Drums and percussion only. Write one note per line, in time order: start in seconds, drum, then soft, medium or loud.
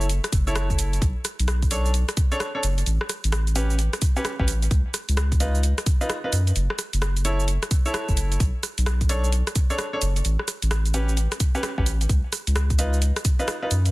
0.01 shaker soft
0.09 closed hi-hat medium
0.09 shaker soft
0.24 cross-stick medium
0.24 closed hi-hat medium
0.24 shaker soft
0.32 kick loud
0.32 closed hi-hat loud
0.32 shaker medium
0.47 shaker soft
0.56 cross-stick loud
0.56 closed hi-hat medium
0.56 shaker soft
0.70 kick medium
0.70 shaker soft
0.79 closed hi-hat loud
0.79 shaker medium
0.93 closed hi-hat soft
0.93 shaker soft
1.02 kick loud
1.02 closed hi-hat medium
1.02 shaker soft
1.25 cross-stick medium
1.25 closed hi-hat loud
1.25 shaker medium
1.40 closed hi-hat medium
1.40 shaker soft
1.48 cross-stick loud
1.48 closed hi-hat medium
1.48 shaker soft
1.62 kick medium
1.62 closed hi-hat soft
1.62 shaker soft
1.71 closed hi-hat loud
1.71 shaker medium
1.86 shaker soft
1.94 closed hi-hat medium
1.94 shaker soft
2.09 cross-stick medium
2.09 closed hi-hat medium
2.09 shaker soft
2.17 kick loud
2.17 closed hi-hat loud
2.17 shaker medium
2.32 shaker soft
2.40 cross-stick loud
2.40 closed hi-hat medium
2.40 shaker soft
2.63 closed hi-hat loud
2.63 shaker medium
2.78 closed hi-hat soft
2.78 shaker soft
2.86 closed hi-hat medium
2.86 shaker soft
3.01 cross-stick medium
3.09 cross-stick medium
3.09 closed hi-hat loud
3.09 shaker medium
3.24 closed hi-hat medium
3.24 shaker soft
3.32 cross-stick loud
3.32 closed hi-hat medium
3.32 shaker soft
3.47 closed hi-hat soft
3.47 shaker soft
3.56 closed hi-hat loud
3.56 shaker medium
3.70 shaker soft
3.79 closed hi-hat medium
3.79 shaker soft
3.93 cross-stick medium
3.93 closed hi-hat medium
3.93 shaker soft
4.02 kick loud
4.02 closed hi-hat loud
4.02 shaker medium
4.16 shaker soft
4.25 cross-stick loud
4.25 closed hi-hat medium
4.25 shaker soft
4.39 kick medium
4.48 closed hi-hat loud
4.48 shaker medium
4.62 closed hi-hat soft
4.62 shaker soft
4.71 kick loud
4.71 closed hi-hat medium
4.71 shaker soft
4.94 cross-stick medium
4.94 closed hi-hat loud
4.94 shaker medium
5.09 closed hi-hat medium
5.09 shaker soft
5.17 cross-stick loud
5.17 closed hi-hat medium
5.17 shaker soft
5.32 kick medium
5.32 closed hi-hat soft
5.32 shaker soft
5.40 closed hi-hat loud
5.40 shaker medium
5.55 shaker soft
5.63 closed hi-hat medium
5.63 shaker soft
5.78 cross-stick medium
5.78 closed hi-hat medium
5.78 shaker soft
5.86 kick loud
5.86 closed hi-hat loud
5.86 shaker medium
6.01 shaker soft
6.10 cross-stick loud
6.10 closed hi-hat medium
6.10 shaker soft
6.33 closed hi-hat loud
6.33 shaker medium
6.47 closed hi-hat soft
6.47 shaker soft
6.56 closed hi-hat medium
6.56 shaker soft
6.70 cross-stick medium
6.79 cross-stick medium
6.79 closed hi-hat loud
6.79 shaker medium
6.93 closed hi-hat medium
6.93 shaker soft
7.02 cross-stick loud
7.02 closed hi-hat medium
7.02 shaker soft
7.17 closed hi-hat soft
7.17 shaker soft
7.25 closed hi-hat loud
7.25 shaker medium
7.40 shaker soft
7.48 closed hi-hat medium
7.48 shaker soft
7.63 cross-stick medium
7.63 closed hi-hat medium
7.63 shaker soft
7.71 kick loud
7.71 closed hi-hat loud
7.71 shaker medium
7.86 shaker soft
7.94 cross-stick loud
7.94 closed hi-hat medium
7.94 shaker soft
8.09 kick medium
8.09 shaker soft
8.17 closed hi-hat loud
8.17 shaker medium
8.32 closed hi-hat soft
8.32 shaker soft
8.40 kick loud
8.40 closed hi-hat medium
8.40 shaker soft
8.63 cross-stick medium
8.63 closed hi-hat loud
8.63 shaker medium
8.78 closed hi-hat medium
8.78 shaker soft
8.86 cross-stick loud
8.86 closed hi-hat medium
8.86 shaker soft
9.01 kick medium
9.01 closed hi-hat soft
9.01 shaker soft
9.09 closed hi-hat loud
9.09 shaker medium
9.24 shaker soft
9.32 closed hi-hat medium
9.32 shaker soft
9.47 cross-stick medium
9.47 closed hi-hat medium
9.47 shaker soft
9.55 kick loud
9.55 closed hi-hat loud
9.55 shaker medium
9.70 shaker soft
9.79 cross-stick loud
9.79 closed hi-hat medium
9.79 shaker soft
10.02 closed hi-hat loud
10.02 shaker medium
10.16 closed hi-hat soft
10.16 shaker soft
10.25 closed hi-hat medium
10.25 shaker soft
10.39 cross-stick medium
10.48 cross-stick medium
10.48 closed hi-hat loud
10.48 shaker medium
10.62 closed hi-hat medium
10.62 shaker soft
10.71 cross-stick loud
10.71 closed hi-hat medium
10.71 shaker soft
10.86 closed hi-hat soft
10.86 shaker soft
10.94 closed hi-hat loud
10.94 shaker medium
11.09 shaker soft
11.17 closed hi-hat medium
11.17 shaker soft
11.32 cross-stick medium
11.32 closed hi-hat medium
11.32 shaker soft
11.40 kick loud
11.40 closed hi-hat loud
11.40 shaker medium
11.55 shaker soft
11.63 cross-stick loud
11.63 closed hi-hat medium
11.63 shaker soft
11.78 kick medium
11.86 closed hi-hat loud
11.86 shaker medium
12.01 closed hi-hat soft
12.01 shaker soft
12.09 kick loud
12.09 closed hi-hat medium
12.09 shaker soft
12.33 cross-stick medium
12.33 closed hi-hat loud
12.33 shaker medium
12.47 closed hi-hat medium
12.47 shaker soft
12.56 cross-stick loud
12.56 closed hi-hat medium
12.56 shaker soft
12.70 kick medium
12.70 closed hi-hat soft
12.70 shaker soft
12.79 closed hi-hat loud
12.79 shaker medium
12.93 shaker soft
13.02 closed hi-hat medium
13.02 shaker soft
13.16 cross-stick medium
13.16 closed hi-hat medium
13.16 shaker soft
13.25 kick loud
13.25 closed hi-hat loud
13.25 shaker medium
13.39 shaker soft
13.48 cross-stick loud
13.48 closed hi-hat medium
13.48 shaker soft
13.71 closed hi-hat loud
13.71 shaker medium
13.86 closed hi-hat soft
13.86 shaker soft